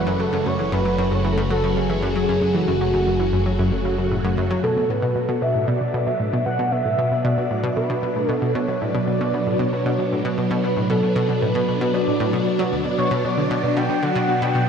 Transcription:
Already playing: analog synth bass F#1, string machine C#3 F#3 A3 F#4, analog synth lead B4
0.07 synth arpeggio sound F#2
0.20 synth arpeggio sound F#3, analog synth lead A4
0.33 synth arpeggio sound F#2
0.46 analog synth bass F#1, synth arpeggio sound F#2, analog synth lead C#5
0.59 synth arpeggio sound E3
0.72 synth arpeggio sound F#2, analog synth lead B4
0.85 synth arpeggio sound F#3
0.98 synth arpeggio sound F#2
1.11 synth arpeggio sound F#2, analog synth lead C#5
1.23 synth arpeggio sound E3, analog synth lead B4
1.33 analog synth lead A4
1.37 synth arpeggio sound F#2
1.41 analog synth lead B4
1.50 synth arpeggio sound F#3, analog synth lead A4
1.64 synth arpeggio sound F#2
1.77 synth arpeggio sound F#2, analog synth lead G#4
1.90 synth arpeggio sound E3
2.03 synth arpeggio sound F#2, analog synth lead G#4
2.16 synth arpeggio sound F#3
2.28 synth arpeggio sound F#2
2.42 synth arpeggio sound F#2
2.55 synth arpeggio sound E3, analog synth lead F#4
2.68 synth arpeggio sound F#2
2.81 synth arpeggio sound F#3
2.94 synth arpeggio sound F#2
3.07 synth arpeggio sound F#2
3.20 synth arpeggio sound E3
3.33 synth arpeggio sound F#2
3.46 synth arpeggio sound F#3
3.59 synth arpeggio sound F#2
3.72 synth arpeggio sound F#2
3.85 synth arpeggio sound C#3
3.98 synth arpeggio sound F#2
4.11 synth arpeggio sound A2
4.24 synth arpeggio sound F#2
4.37 synth arpeggio sound F#2
4.50 synth arpeggio sound F#3
4.63 string machine B2, synth arpeggio sound B2, synth texture D4, analog synth lead A4
4.77 synth arpeggio sound B2
4.87 synth arpeggio sound A2, string machine F#3, analog synth lead B4
5.02 synth arpeggio sound B2
5.15 synth arpeggio sound B2
5.27 synth arpeggio sound B2, string machine D4
5.42 synth arpeggio sound B2, analog synth lead E5
5.55 synth arpeggio sound A2
5.67 synth arpeggio sound B2, analog synth lead D5
5.81 synth arpeggio sound B2
5.94 synth arpeggio sound B2
6.06 synth arpeggio sound B2, analog synth lead E5
6.20 synth arpeggio sound A2
6.33 synth arpeggio sound B2
6.45 synth arpeggio sound B2, analog synth lead F#5
6.59 synth arpeggio sound B2
6.71 synth arpeggio sound B2, analog synth lead E5
6.85 synth arpeggio sound A2
6.99 synth arpeggio sound B2
7.11 synth arpeggio sound B2
7.24 synth arpeggio sound B2, analog synth lead D5
7.38 synth arpeggio sound B2
7.51 synth arpeggio sound A2
7.63 synth arpeggio sound B2
7.76 synth arpeggio sound B2, analog synth lead B4
7.90 synth arpeggio sound B2
8.03 synth arpeggio sound B2
8.16 synth arpeggio sound A2
8.29 synth arpeggio sound B2, analog synth lead A4
8.42 synth arpeggio sound B2
8.54 synth arpeggio sound B2, analog synth lead C#5
8.68 synth arpeggio sound B2
8.81 synth arpeggio sound A2, analog synth lead D5
8.95 synth arpeggio sound B2
9.07 synth arpeggio sound B2
9.21 synth arpeggio sound B2
9.34 synth arpeggio sound B2
9.47 synth arpeggio sound A2
9.59 synth arpeggio sound B2, analog synth lead C#5
9.73 synth arpeggio sound B2
9.86 synth arpeggio sound B2
9.99 synth arpeggio sound B2
10.12 synth arpeggio sound A2
10.25 synth arpeggio sound B2
10.38 synth arpeggio sound B2
10.51 synth arpeggio sound B2
10.64 synth arpeggio sound B2, analog synth lead B4
10.77 synth arpeggio sound A2
10.90 synth arpeggio sound B2, analog synth lead A4
11.03 synth arpeggio sound B2
11.16 synth arpeggio sound B2
11.29 synth arpeggio sound B2
11.41 synth arpeggio sound A2, analog synth lead B4
11.55 synth arpeggio sound B2
11.68 synth arpeggio sound B2
11.81 synth arpeggio sound B2
11.93 synth arpeggio sound B2, analog synth lead D5
12.07 synth arpeggio sound A2
12.20 synth arpeggio sound A2
12.33 synth arpeggio sound B2
12.59 synth arpeggio sound F#3
12.72 synth arpeggio sound D2
12.85 synth arpeggio sound B2
12.92 analog synth lead D5
12.98 synth arpeggio sound B2, analog synth lead C#5
13.11 synth arpeggio sound B2
13.25 synth arpeggio sound B2, analog synth lead D5
13.37 synth arpeggio sound D3
13.51 synth arpeggio sound B2
13.64 synth arpeggio sound B2
13.77 synth arpeggio sound B2, analog synth lead G5
13.90 synth arpeggio sound B2
14.03 synth arpeggio sound D3, analog synth lead F#5
14.15 synth arpeggio sound B2
14.29 synth arpeggio sound B2
14.42 synth arpeggio sound B2, analog synth lead G5
14.55 synth arpeggio sound B2

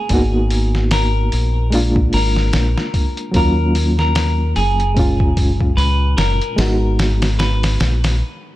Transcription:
Already playing: reed electric piano G#3 A#3 C#4 F5, clean electric guitar G#4
0.09 fingered electric bass G#1, reed electric piano A#3 B3 D#4, kick, open hi-hat
0.13 reed electric piano F#4
0.50 open hi-hat
0.75 snare
0.91 clean electric guitar A#4, snare, open hi-hat
1.32 fingered electric bass A#1, open hi-hat
1.70 reed electric piano G#3 A#3 D4, open hi-hat
1.75 reed electric piano F4
1.96 kick
2.13 fingered electric bass G#1, clean electric guitar A#4, open hi-hat
2.36 snare
2.53 fingered electric bass A#1, snare, open hi-hat
2.78 snare
2.94 kick, open hi-hat
3.17 closed hi-hat
3.31 fingered electric bass D#2, reed electric piano F#3 A#3 C#4, kick, open hi-hat
3.36 reed electric piano F4, clean electric guitar A#4
3.75 open hi-hat
3.99 clean electric guitar A#4, snare
4.15 snare, open hi-hat
4.56 fingered electric bass F#1, clean electric guitar G#4, open hi-hat
4.80 closed hi-hat
4.94 reed electric piano A#2 G#3 C#4, kick, open hi-hat
4.99 reed electric piano F4
5.20 kick
5.37 kick, open hi-hat
5.61 kick
5.77 fingered electric bass C#2, clean electric guitar B4, open hi-hat
6.17 fingered electric bass F#1, clean electric guitar A#4, snare, open hi-hat
6.42 closed hi-hat
6.56 fingered electric bass G#1, reed electric piano G#3 B3 D#4, snare, open hi-hat
6.61 reed electric piano F#4
6.99 snare, open hi-hat
7.22 snare, open hi-hat
7.39 clean electric guitar B4, snare, open hi-hat
7.63 snare, open hi-hat
7.80 fingered electric bass A#1, snare, open hi-hat
8.04 snare, open hi-hat

